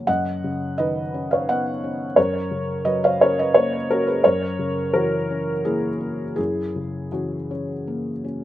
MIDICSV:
0, 0, Header, 1, 2, 480
1, 0, Start_track
1, 0, Key_signature, 6, "major"
1, 0, Tempo, 694444
1, 49, Time_signature, 3, 2, 24, 8
1, 3408, Tempo, 736196
1, 5697, End_track
2, 0, Start_track
2, 0, Title_t, "Felt piano"
2, 0, Program_c, 0, 0
2, 0, Control_c, 0, 64, 127
2, 0, Note_on_c, 0, 61, 44
2, 50, Note_on_c, 0, 78, 104
2, 53, Note_on_c, 0, 42, 67
2, 58, Note_on_c, 0, 75, 77
2, 63, Control_c, 0, 64, 0
2, 70, Note_off_c, 0, 61, 0
2, 159, Control_c, 0, 64, 127
2, 305, Note_on_c, 0, 49, 49
2, 518, Note_off_c, 0, 75, 0
2, 538, Note_on_c, 0, 75, 86
2, 541, Note_off_c, 0, 78, 0
2, 549, Note_on_c, 0, 71, 67
2, 551, Note_on_c, 0, 51, 53
2, 691, Note_off_c, 0, 49, 0
2, 789, Note_on_c, 0, 61, 50
2, 881, Note_off_c, 0, 71, 0
2, 901, Note_off_c, 0, 75, 0
2, 905, Note_on_c, 0, 77, 77
2, 918, Note_on_c, 0, 73, 60
2, 931, Note_off_c, 0, 51, 0
2, 1022, Note_off_c, 0, 73, 0
2, 1023, Note_off_c, 0, 77, 0
2, 1030, Note_on_c, 0, 78, 96
2, 1034, Note_on_c, 0, 59, 50
2, 1036, Note_on_c, 0, 75, 65
2, 1167, Note_off_c, 0, 61, 0
2, 1270, Note_on_c, 0, 61, 50
2, 1407, Note_off_c, 0, 59, 0
2, 1470, Note_off_c, 0, 42, 0
2, 1475, Note_off_c, 0, 75, 0
2, 1495, Note_on_c, 0, 73, 93
2, 1500, Note_off_c, 0, 78, 0
2, 1500, Note_on_c, 0, 42, 65
2, 1501, Note_off_c, 0, 61, 0
2, 1501, Note_on_c, 0, 70, 72
2, 1508, Control_c, 0, 64, 0
2, 1632, Control_c, 0, 64, 127
2, 1736, Note_on_c, 0, 49, 49
2, 1946, Note_off_c, 0, 70, 0
2, 1969, Note_on_c, 0, 75, 97
2, 1970, Note_off_c, 0, 73, 0
2, 1974, Note_on_c, 0, 54, 53
2, 1974, Note_on_c, 0, 71, 73
2, 2084, Note_off_c, 0, 71, 0
2, 2089, Note_off_c, 0, 75, 0
2, 2101, Note_on_c, 0, 77, 86
2, 2107, Note_on_c, 0, 73, 66
2, 2116, Note_off_c, 0, 49, 0
2, 2211, Note_off_c, 0, 73, 0
2, 2215, Note_off_c, 0, 77, 0
2, 2221, Note_on_c, 0, 73, 94
2, 2232, Note_on_c, 0, 61, 57
2, 2234, Note_on_c, 0, 70, 68
2, 2333, Note_off_c, 0, 70, 0
2, 2335, Note_off_c, 0, 73, 0
2, 2344, Note_on_c, 0, 75, 88
2, 2351, Note_on_c, 0, 71, 66
2, 2354, Note_off_c, 0, 54, 0
2, 2450, Note_on_c, 0, 73, 94
2, 2451, Note_off_c, 0, 71, 0
2, 2455, Note_off_c, 0, 75, 0
2, 2455, Note_on_c, 0, 70, 63
2, 2459, Note_on_c, 0, 58, 55
2, 2601, Note_off_c, 0, 61, 0
2, 2672, Note_off_c, 0, 70, 0
2, 2686, Note_off_c, 0, 73, 0
2, 2699, Note_on_c, 0, 70, 87
2, 2704, Note_on_c, 0, 61, 51
2, 2707, Note_on_c, 0, 66, 68
2, 2807, Note_off_c, 0, 66, 0
2, 2811, Note_off_c, 0, 70, 0
2, 2813, Note_on_c, 0, 71, 81
2, 2823, Note_on_c, 0, 68, 64
2, 2833, Note_off_c, 0, 58, 0
2, 2898, Note_off_c, 0, 42, 0
2, 2925, Note_off_c, 0, 68, 0
2, 2928, Note_off_c, 0, 71, 0
2, 2931, Note_on_c, 0, 73, 99
2, 2933, Note_off_c, 0, 61, 0
2, 2934, Control_c, 0, 64, 0
2, 2937, Note_on_c, 0, 42, 71
2, 2938, Note_on_c, 0, 70, 78
2, 3054, Control_c, 0, 64, 127
2, 3173, Note_on_c, 0, 49, 53
2, 3386, Note_off_c, 0, 70, 0
2, 3410, Note_off_c, 0, 73, 0
2, 3411, Note_on_c, 0, 70, 89
2, 3416, Note_on_c, 0, 52, 56
2, 3422, Note_on_c, 0, 66, 67
2, 3550, Note_off_c, 0, 49, 0
2, 3653, Note_on_c, 0, 61, 52
2, 3782, Note_off_c, 0, 52, 0
2, 3852, Note_off_c, 0, 66, 0
2, 3873, Note_off_c, 0, 70, 0
2, 3876, Note_on_c, 0, 68, 88
2, 3879, Note_on_c, 0, 58, 54
2, 3880, Note_on_c, 0, 64, 60
2, 4019, Note_off_c, 0, 61, 0
2, 4108, Note_on_c, 0, 61, 48
2, 4256, Note_off_c, 0, 58, 0
2, 4328, Note_off_c, 0, 64, 0
2, 4329, Note_off_c, 0, 68, 0
2, 4330, Note_off_c, 0, 42, 0
2, 4339, Note_on_c, 0, 68, 83
2, 4350, Note_on_c, 0, 64, 60
2, 4351, Note_on_c, 0, 42, 56
2, 4364, Control_c, 0, 64, 0
2, 4492, Control_c, 0, 64, 127
2, 4496, Note_off_c, 0, 61, 0
2, 4600, Note_on_c, 0, 49, 43
2, 4810, Note_off_c, 0, 64, 0
2, 4830, Note_off_c, 0, 68, 0
2, 4835, Note_on_c, 0, 66, 56
2, 4839, Note_on_c, 0, 52, 42
2, 4841, Note_on_c, 0, 61, 42
2, 4985, Note_off_c, 0, 49, 0
2, 5079, Note_off_c, 0, 61, 0
2, 5088, Note_on_c, 0, 61, 46
2, 5228, Note_off_c, 0, 52, 0
2, 5327, Note_on_c, 0, 58, 44
2, 5474, Note_off_c, 0, 61, 0
2, 5566, Note_off_c, 0, 66, 0
2, 5568, Note_on_c, 0, 61, 40
2, 5697, Note_off_c, 0, 42, 0
2, 5697, Note_off_c, 0, 58, 0
2, 5697, Note_off_c, 0, 61, 0
2, 5697, End_track
0, 0, End_of_file